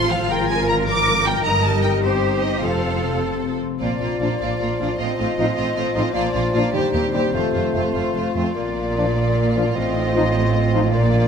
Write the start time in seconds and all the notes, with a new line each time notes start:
Already playing: A1 A2 D#3 F3 A3 C4 F4 A4 C5 C6
0.12 F3 F5
0.30 G#1 G#2 A#4 G5
0.49 F3 G#5
0.69 D3 A#5
0.88 F3 D6
1.07 D#3
1.26 F3 G5
1.44 G1 G2 G3 D#4 D#5 A#5
1.64 G3 A5
1.83 D#4 A#4 G5
2.03 G2 C4 G4 C5
2.23 C4
2.43 D#4 A#4 D#5
2.62 F1 F2 F4 A4 F5
2.83 C4
3.03 C3
3.23 C4
3.43 A#3
3.62 C4
3.80 A#1 A#2 F3 A#3 F4 D5
3.99 A#1 A#2 A#3 D4 F4 D5
4.20 A#1 A#2 F3 A#3 D4 F4 A#4 D5
4.40 A#1 A#2 A#3 F4 D5
4.59 A#1 A#2 A#3 F4 A#4 D5
4.80 A#1 A#2 F3 A#3 D4 F4 D5
4.98 A1 A2 C4 F4 D#5
5.18 A1 A2 C4 D#4 F4 D#5
5.37 A1 A2 F3 C4 D#4 F4 C5 D#5
5.56 A1 A2 C4 F4 D#5
5.75 A1 A2 C4 F4 C5 D#5
5.95 A1 A2 F3 C4 D#4 F4 D#5
6.14 A#1 A#2 F3 A#3 F4 D5
6.33 A#1 A#2 A#3 D4 F4 D5
6.53 A#1 A#2 F3 A#3 D4 F4 A#4 D5
6.73 D#2 D#3 G3 D#4 G4 C5
6.93 D#2 G3 C4 G4 C5
7.13 D#2 G3 C4 G4 C5
7.34 F1 F2 F3 A3 F4 C5
7.54 F1 F2 A3 F4 C5
7.74 F1 F2 A3 C4 F4 C5
7.95 F1 F2 A3 F4 C5 F5
8.15 F1 F2 A3 F4 C5
8.36 F1 F2 A3 C4 F4 A4 C5
8.56 A#1 A#2 A#3 F4 D5
8.78 D4
8.97 F3 D4 A#4
9.18 D5
9.38 A#4
9.57 F3 D4 F4
9.75 A1 A2 C4 F4 D#5
9.96 D#4
10.15 F3 D#4 C5
10.35 D#5
10.55 C5
10.74 F3 D#4 F4
10.93 A#1 A#2 A#3 F4 D5
11.13 D4